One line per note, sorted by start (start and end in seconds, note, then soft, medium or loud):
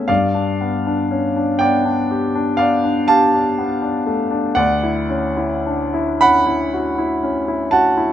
0.00 0.11 A3 soft
0.00 0.11 B3 soft
0.00 0.12 C#4 soft
0.00 0.11 G#4 soft
0.00 0.11 C#5 soft
0.00 0.11 E5 medium
0.08 4.54 G2 soft
0.08 1.58 D5 medium
0.08 1.62 F5 medium
0.35 0.76 D4 soft
0.61 1.02 B3 soft
0.87 1.27 D4 soft
1.11 1.37 C#4 soft
1.36 1.77 D4 soft
1.59 2.01 B3 soft
1.59 2.55 D5 medium
1.59 2.58 G5 medium
1.85 2.25 D4 soft
2.11 2.50 G4 soft
2.35 2.74 D4 soft
2.57 2.98 B3 soft
2.57 3.05 D5 soft
2.57 3.07 F5 medium
2.84 3.23 D4 soft
3.08 3.48 G4 soft
3.08 4.53 F5 medium
3.08 4.57 A5 medium
3.34 3.73 D4 soft
3.58 3.97 B3 soft
3.82 4.22 D4 soft
4.06 4.47 A3 soft
4.31 4.57 D4 soft
4.55 8.13 D2 soft
4.55 6.18 D5 medium
4.55 6.20 F#5 medium
4.83 5.28 E4 soft
5.10 5.56 C#4 soft
5.37 5.84 E4 soft
5.66 5.95 D4 soft
5.94 6.37 E4 soft
6.21 6.63 C#4 soft
6.21 7.69 F#5 medium
6.21 7.73 B5 medium
6.46 6.88 E4 soft
6.74 7.14 F#4 soft
6.98 7.39 E4 soft
7.23 7.64 C#4 soft
7.48 7.88 E4 soft
7.71 8.13 F#4 soft
7.71 8.13 F#5 medium
7.71 8.13 A5 medium
7.97 8.13 E4 soft